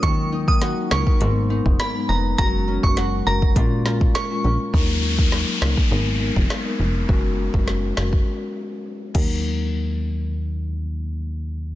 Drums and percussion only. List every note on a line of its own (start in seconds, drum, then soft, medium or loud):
0.03 kick loud
0.03 closed hi-hat medium
0.48 kick medium
0.61 snare medium
0.61 closed hi-hat medium
0.91 cross-stick loud
0.91 snare loud
1.07 kick loud
1.21 closed hi-hat medium
1.66 kick medium
1.80 cross-stick loud
1.80 snare loud
1.80 closed hi-hat medium
2.38 kick loud
2.38 closed hi-hat medium
2.83 kick medium
2.97 snare medium
2.97 closed hi-hat medium
3.42 kick loud
3.56 kick loud
3.56 closed hi-hat medium
3.86 snare medium
4.01 kick medium
4.15 cross-stick loud
4.15 snare loud
4.15 closed hi-hat medium
4.74 kick loud
5.19 kick medium
5.32 snare medium
5.62 cross-stick medium
5.62 snare loud
5.77 kick medium
6.36 kick medium
6.50 cross-stick medium
6.50 snare loud
7.09 kick loud
7.54 kick medium
7.68 snare medium
7.97 cross-stick medium
7.97 snare loud
8.13 kick medium
9.15 kick loud
9.15 crash medium